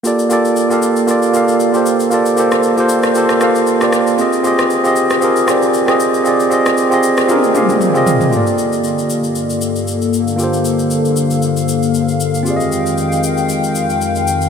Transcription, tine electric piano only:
X:1
M:4/4
L:1/16
Q:"Swing 16ths" 1/4=116
K:Gm
V:1 name="Tine electric piano"
[B,FGAd]2 [B,FGAd]2 z [B,FGAf]2 z [B,FGAd]2 [B,FGAf]2 z [B,FGAc]2 z | [B,FGAd]2 [B,FGAc]2 z [B,FGAc]2 z [B,FGAc]2 [B,FGAf]2 z [B,FGAd]2 z | [CFG_Ae]2 [CFGAe]2 z [CFGAe]2 z [CFGAB]2 [CFGAd]2 z [CFGAe]2 z | [CFG_Ad]2 [CFGAe]2 z [CFGAe]2 z [CFGAB]2 [CFGAf]2 z [CFGAe]2 z |
[A,B,FGAd]16 | [B,FGAc]16 | [CFG_Ade]16 |]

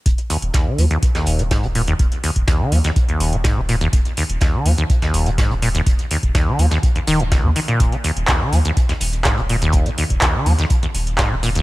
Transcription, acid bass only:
X:1
M:4/4
L:1/16
Q:1/4=124
K:Ebm
V:1 name="Acid bass" clef=bass
z2 E,, z E,, E, G, E,, z E,,2 E, A,, E, B,, E,, | z2 E,, z E,, E, G, E,, z E,,2 E, A,, E, B,, E,, | z2 E,, z E,, E, G, E,, z E,,2 E, A,, E, B,, E,, | z2 E,, z E,, E, G, E,, z E,, E, F,, D,, G, E, B,,- |
B,, E, E,, z E,, E, G, E,, z E,, z2 A,, E, B,, E,,- | E,, E, E,, z E,, E, G, E,, z E,, z2 A,, E, B,, E,, |]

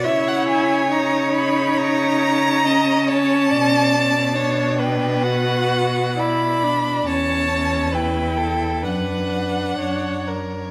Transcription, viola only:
X:1
M:4/4
L:1/8
Q:1/4=69
K:Bm
V:1 name="Viola"
E2 ^D4 C2- | C2 D2 F2 E D | C C E2 D4 |]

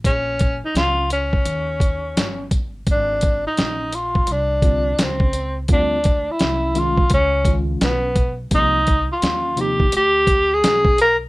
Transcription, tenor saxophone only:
X:1
M:4/4
L:1/16
Q:"Swing 16ths" 1/4=85
K:Ablyd
V:1 name="Tenor saxophone"
_D3 E F2 D8 z2 | D3 E3 F2 D4 C3 z | D3 =E3 F2 _D2 z2 _C3 z | E3 F3 G2 G3 A3 B2 |]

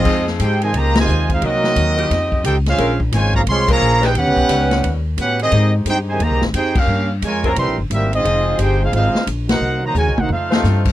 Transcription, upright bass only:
X:1
M:4/4
L:1/8
Q:"Swing" 1/4=176
K:Fm
V:1 name="Upright bass" clef=bass
F,,2 A,,2 D,,2 E,,2 | C,,2 E,,2 F,,2 D,,2 | B,,,2 A,,,2 C,,2 B,,,2 | (3E,, D,, =B,,, D,,2 E,,2 =A,,2 |
A,,2 G,,2 (3E,, C,, A,,, F,,2 | G,,2 F,,2 (3C,, B,,, G,,, A,,,2 | F,,,2 G,,,2 A,,, z B,,,2 | C,,2 (3E,, C,, B,,, F,,2 G,,2 |]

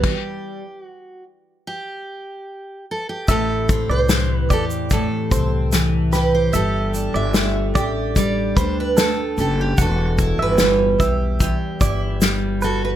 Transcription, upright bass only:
X:1
M:4/4
L:1/16
Q:1/4=74
K:Ador
V:1 name="Upright bass" clef=bass
z16 | A,,,3 C,,3 E,,3 z C,,6 | G,,,3 G,,,3 A,,,4 D,,4 F,,,2 | E,,,3 G,,,3 B,,,3 z G,,,6 |]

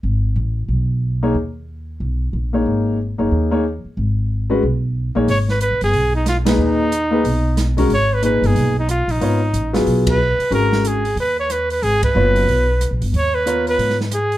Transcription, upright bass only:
X:1
M:4/4
L:1/8
Q:"Swing" 1/4=183
K:G#dor
V:1 name="Upright bass" clef=bass
G,,,2 =A,,,2 B,,,4 | D,,4 B,,,2 A,,,2 | G,,,3 F,,, D,,3 z | G,,,4 B,,,3 A,,, |
G,,,2- (3G,,, A,,, =G,,, B,,,4 | D,,4 B,,,4 | G,,,3 =G,,, B,,,3 A,,, | G,,,2 =A,,,2 B,,,3 z |
G,,,4 D,,4 | G,,,2 F,,,2 B,,,2- (3B,,, A,,, =G,,, | D,,4 G,,4 |]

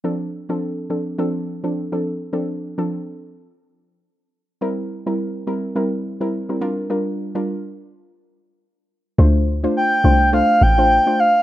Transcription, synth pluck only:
X:1
M:4/4
L:1/16
Q:"Swing 16ths" 1/4=105
K:Dm
V:1 name="Synth pluck"
[F,CDA]2 z [F,CDA]3 [F,CDA]2 [F,CDA]3 [F,CDA] z [F,CDA] z2 | [F,CDA]3 [F,CDA] z12 | [G,CEB]2 z [G,CEB]3 [G,CEB]2 [G,CEB]3 [G,CEB] z [G,CEB] [G,DFB]2 | [G,DFB]3 [G,DFB] z12 |
[A,DFc]2 z [A,DFc]3 [A,DFc]2 [A,DFc]3 [A,DFc] z [A,DFc] z2 |]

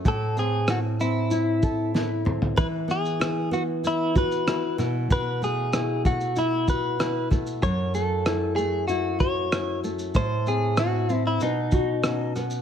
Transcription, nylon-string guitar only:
X:1
M:4/4
L:1/8
Q:1/4=95
K:Bmix
V:1 name="Nylon-string guitar"
A,, =C E C E A E C | E, B, E B, E F E B,, | B,, A, E A, E F E A, | F,, A, E A, E F E A, |
A,, =C E C B,, F ^C B, |]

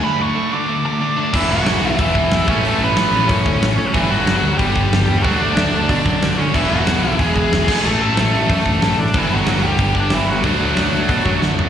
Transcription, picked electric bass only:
X:1
M:4/4
L:1/8
Q:1/4=184
K:Dlyd
V:1 name="Picked electric bass" clef=bass
z8 | E,,, E,,, E,,, B,,, E,,,2 E,,, A,,, | A,,, A,,, A,,, A,,, F,, D,, A,, A,, | =G,,, G,,, G,,, D,, G,,,2 G,,, E,, |
D,, D,, D,, D,, B,, F,, D, D, | E,,, E,,, E,,, B,,, E,,,2 E,,, A,,, | A,,, A,,, A,,, A,,, F,, D,, A,, A,, | =G,,, G,,, G,,, D,, G,,,2 G,,, G,,, |
D,, D,, D,, D,, B,, F,, D, F,, |]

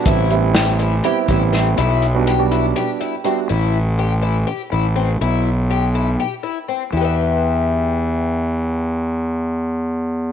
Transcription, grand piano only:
X:1
M:7/8
L:1/16
Q:1/4=122
K:Em
V:1 name="Grand piano"
z12 z2 | z8 z2 g2 e2 | z12 z2 | z12 z2 |
z12 z2 | z12 z2 |]
V:2 name="Grand piano"
[G,B,CE]2 [G,B,CE]4- [G,B,CE] z [G,B,CE]2 [G,B,CE]4 | z3 [G,B,DF]2 [G,B,DF]6 z [G,B,DF]2 | z12 z2 | z12 z2 |
z12 z2 | z12 z2 |]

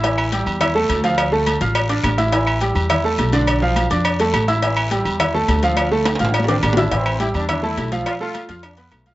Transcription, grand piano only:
X:1
M:4/4
L:1/8
Q:1/4=209
K:Ddor
V:1 name="Grand piano"
[E,Ee]2 [G,Gg]2 [Eee'] [A,Aa]2 [F,Ff]- | [F,Ff] [A,Aa]2 [Fff']2 [Ddd']2 [Eee'] | [E,Ee]2 [G,Gg]2 [Eee'] [A,Aa]2 [D,Dd]- | [D,Dd] [F,Ff]2 [Ddd']2 [A,Aa]2 [Eee'] |
[E,Ee]2 [G,Gg]2 [Eee'] [A,Aa]2 [F,Ff]- | [F,Ff] [A,Aa]2 [Fff']2 [Ddd']2 [Eee'] | [E,Ee]2 [G,Gg]2 [Eee'] [A,Aa]2 [F,Ff]- | [F,Ff] [A,Aa]2 [Fff']2 [B,Bb]2 [Fff'] |]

